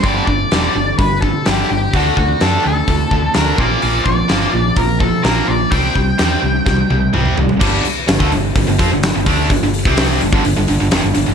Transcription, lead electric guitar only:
0.03 D5
0.26 D5
0.98 B4
1.21 A4
1.46 G4
1.70 G4
1.95 F#4
2.18 F#4
2.42 A4
2.64 A4
3.35 A#4
3.59 D5
4.05 D5
4.77 A#4
5.00 A4
5.24 A#4
5.47 D5
5.71 G5

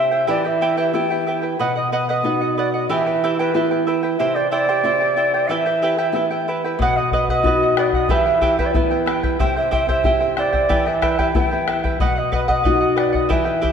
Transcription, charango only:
Already playing: E4 C5 E5 G5
0.11 E4 C5 G5
0.27 E4 G4 B4 E5 G5
0.45 E4 B4 G5
0.61 E4 G4 B4 E5 G5
0.77 E4 G4 B4 E5 G5
0.93 E4 B4 E5 G5
1.10 E4 B4 G5
1.27 E4 B4 E5 G5
1.42 E4 B4 G5
1.59 B4 D#5 F#5
1.75 D#5 F#5
1.92 B4 D#5 F#5
2.09 B4 D#5 F#5
2.25 B4 D#5 F#5
2.41 D#5 F#5
2.57 B4 D#5 F#5
2.74 D#5 F#5
2.89 E4 G4 B4 E5 G5
3.06 E4 B4 G5
3.24 E4 G4 B4 E5 G5
3.39 E4 G4 B4 E5 G5
3.55 E4 B4 E5 G5
3.71 E4 B4 G5
3.87 E4 B4 E5 G5
4.03 E4 B4 G5
4.19 E4 G4 C5 E5 G5
4.36 E4 C5 G5
4.51 E4 G4 C5 E5 G5
4.69 E4 G4 C5 E5 G5
4.84 E4 C5 E5 G5
5.00 E4 C5 G5
5.16 E4 C5 E5 G5
5.34 E4 C5 G5
5.50 E4 G4 B4 E5 G5
5.66 E4 B4 G5
5.82 E4 G4 B4 E5 G5
5.98 E4 G4 B4 E5 G5
6.14 E4 B4 E5 G5
6.31 E4 B4 G5
6.48 E4 B4 E5 G5
6.64 E4 B4 G5
6.82 B4 D#5 F#5
6.98 D#5 F#5
7.13 B4 D#5 F#5
7.30 B4 D#5 F#5
7.46 B4 D#5 F#5
7.62 D#5 F#5
7.78 B4 D#5 F#5
7.95 D#5 F#5
8.10 E4 G4 B4 E5 G5
8.25 E4 B4 G5
8.41 E4 G4 B4 E5 G5
8.59 E4 G4 B4 E5 G5
8.75 E4 B4 E5 G5
8.91 E4 B4 G5
9.06 E4 B4 E5 G5
9.23 E4 B4 G5
9.39 E4 G4 C5 E5 G5
9.56 E4 C5 G5
9.71 E4 G4 C5 E5 G5
9.89 E4 G4 C5 E5 G5
10.05 E4 C5 E5 G5
10.20 E4 C5 G5
10.37 E4 C5 E5 G5
10.53 E4 C5 G5
10.69 E4 G4 B4 E5 G5
10.86 E4 B4 G5
11.02 E4 G4 B4 E5 G5
11.19 E4 G4 B4 E5 G5
11.35 E4 B4 E5 G5
11.51 E4 B4 G5
11.67 E4 B4 E5 G5
11.84 E4 B4 G5
12.00 B4 D#5 F#5
12.16 D#5 F#5
12.32 B4 D#5 F#5
12.48 B4 D#5 F#5
12.63 B4 D#5 F#5
12.80 D#5 F#5
12.96 B4 D#5 F#5
13.13 D#5 F#5
13.29 E4 G4 B4 E5 G5
13.45 E4 B4 G5
13.61 E4 G4 B4 E5 G5

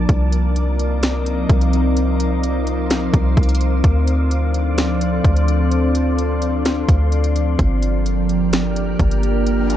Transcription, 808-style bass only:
0.09 C2
1.49 C2
3.14 C2
3.37 C2
3.84 D2
5.25 D2
6.89 D2
7.59 G1
8.99 G1

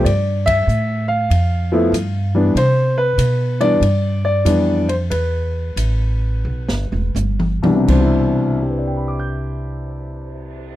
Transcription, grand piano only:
0.05 D5
0.46 E5
1.08 F5
1.72 F3 A3 B3 E4
2.35 E3 G3 B3 D4
2.57 C5
2.98 B4
3.60 E3 G3 B3 D4 D5
4.25 D5
4.45 E3 G3 B3 D4
4.89 C5
5.10 B4
7.62 C2 B2 E3 G3 D4
7.76 C3
7.89 D4 C5
8.01 E4
8.62 G4
8.70 B4
8.78 D5
8.87 G5
8.97 B5
9.08 D6
9.19 G6

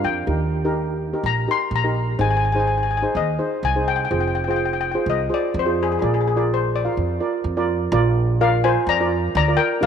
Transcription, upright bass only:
0.04 F2
0.27 D#2
1.23 A#1
1.71 A#1
2.19 G#1
3.15 D#2
3.63 C2
4.11 F1
5.06 C2
5.54 F2
6.02 A#1
6.97 F2
7.44 F2
7.92 A#1
8.87 F2
9.35 D2
9.83 D#2

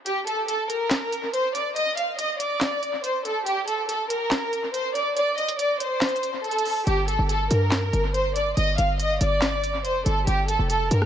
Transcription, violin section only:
0.06 G4
0.27 A4
0.48 A4
0.70 A#4
1.34 C5
1.55 D5
1.76 D#5
1.98 F5
2.19 D#5
2.40 D5
3.04 C5
3.25 A4
3.46 G4
3.68 A4
3.89 A4
4.10 A#4
4.74 C5
4.95 D5
5.17 D5
5.38 D#5
5.59 D5
5.80 C5
6.44 A4
6.87 G4
7.08 A4
7.29 A4
7.51 A#4
8.14 C5
8.36 D5
8.57 D#5
8.78 F5
9.00 D#5
9.21 D5
9.85 C5
10.06 A4
10.27 G4
10.49 A4
10.70 A4
10.91 A#4

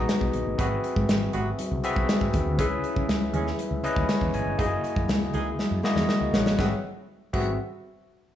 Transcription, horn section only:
0.59 C3 F#3 B3 F#4
1.34 C3 F#3 B3 F#4
2.59 E3 G#3 C#4 G#4
3.34 E3 G#3 C#4 G#4
4.59 E3 G#3 D#4 G#4
5.34 E3 G#3 D#4 G#4
6.59 C3 F#3 B3 F#4
7.34 C3 F#3 B3 F#4

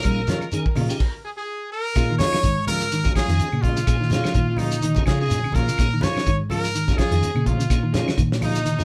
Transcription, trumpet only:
Already playing: A#4
1.24 G#4
1.37 G#4
1.72 A#4
2.18 C#5
2.67 A#4
3.15 G#4
3.62 F4
4.58 D#4
5.06 G#4
5.21 G#4
5.55 A#4
6.03 C#5
6.51 A#4
6.98 G#4
7.47 F4
8.44 D#4

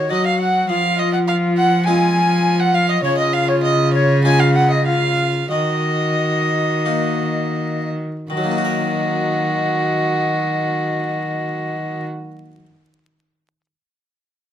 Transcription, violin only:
Already playing: C#5
0.11 D#5
0.26 F5
0.40 F#5
0.69 F5
0.99 D#5
1.13 F#5
1.27 F5
1.57 F#5
1.86 G#5
2.59 F#5
2.74 F5
2.89 D#5
3.03 C#5
3.18 D#5
3.33 F5
3.48 C#5
3.63 D#5
3.94 C#5
4.24 G#5
4.39 F5
4.55 F#5
4.71 D#5
4.86 F5
5.51 D#5
8.30 F#4

